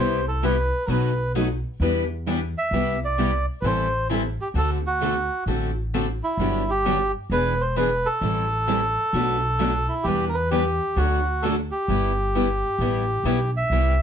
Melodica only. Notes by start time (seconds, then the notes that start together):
0.00 C5
0.28 A4
0.44 B4
0.86 A#4
0.90 B4
2.58 E5
3.05 D5
3.61 B4
3.66 C5
4.42 G4
4.58 A4
4.87 F#4
6.24 E4
6.70 G4
7.32 B4
7.61 C5
7.77 B4
8.06 A4
9.88 E4
10.04 G4
10.29 A#4
10.34 B4
10.51 G4
10.97 F#4
11.42 A4
11.72 G4
13.57 E5